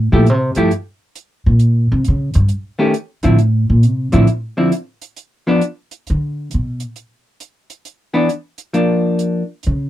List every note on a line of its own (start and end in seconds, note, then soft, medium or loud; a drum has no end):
0.12 0.30 A#2 medium
0.12 0.26 F3 medium
0.12 0.26 A3 medium
0.12 0.26 E4 medium
0.12 0.26 G4 medium
0.26 0.56 C3 medium
0.26 closed hi-hat soft
0.55 0.71 G2 medium
0.55 0.70 F3 medium
0.55 0.70 A3 medium
0.55 0.70 E4 medium
0.55 0.71 G4 medium
0.55 closed hi-hat soft
0.71 closed hi-hat soft
1.15 closed hi-hat soft
1.46 1.87 A#2 medium
1.59 closed hi-hat soft
1.92 2.06 C3 medium
2.04 2.35 C#3 medium
2.04 closed hi-hat soft
2.34 2.50 G2 medium
2.34 closed hi-hat soft
2.49 closed hi-hat soft
2.79 2.93 D#3 soft
2.79 2.93 A3 medium
2.79 2.93 C#4 medium
2.79 2.93 G4 medium
2.94 closed hi-hat soft
3.23 3.66 A2 medium
3.23 3.37 D3 soft
3.23 3.37 F3 medium
3.23 3.38 C4 medium
3.23 3.38 E4 medium
3.23 closed hi-hat soft
3.38 closed hi-hat soft
3.70 3.87 A#2 medium
3.83 4.13 C3 medium
3.83 closed hi-hat soft
4.12 4.23 A2 medium
4.12 4.26 D3 soft
4.12 4.27 F3 medium
4.12 4.27 C4 medium
4.12 4.27 E4 medium
4.12 closed hi-hat soft
4.27 closed hi-hat soft
4.57 4.71 D3 soft
4.57 4.71 F3 medium
4.57 4.71 C4 soft
4.57 4.72 E4 medium
4.72 closed hi-hat soft
5.02 closed hi-hat soft
5.16 closed hi-hat soft
5.47 5.61 F3 medium
5.47 5.61 B3 medium
5.47 5.61 D4 medium
5.61 closed hi-hat soft
5.91 closed hi-hat soft
6.07 6.50 D3 medium
6.07 closed hi-hat soft
6.51 6.81 B2 medium
6.51 closed hi-hat soft
6.80 closed hi-hat soft
6.96 closed hi-hat soft
7.40 closed hi-hat soft
7.70 closed hi-hat soft
7.85 closed hi-hat soft
8.14 8.28 E3 medium
8.14 8.28 B3 medium
8.14 8.28 D4 medium
8.29 closed hi-hat soft
8.58 closed hi-hat soft
8.73 9.42 F3 soft
8.73 9.42 A#3 medium
8.73 9.42 D4 medium
8.73 closed hi-hat soft
9.19 closed hi-hat soft
9.63 9.90 C#3 medium
9.63 closed hi-hat soft